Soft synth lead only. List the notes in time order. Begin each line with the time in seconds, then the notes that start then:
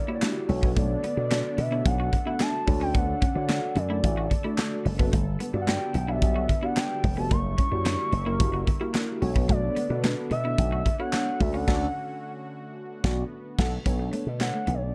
Already playing: D5
0.78 D5
1.60 E5
1.87 F#5
2.28 F#5
2.41 A5
2.82 G5
2.96 F#5
3.77 D5
5.61 F#5
5.68 G5
6.09 E5
6.64 F#5
6.78 G5
7.18 A5
7.32 C#6
9.49 D5
10.32 E5
10.99 F#5
11.13 F#5
11.40 E5
11.54 F#5
14.42 F#5
14.74 C#5
14.82 D5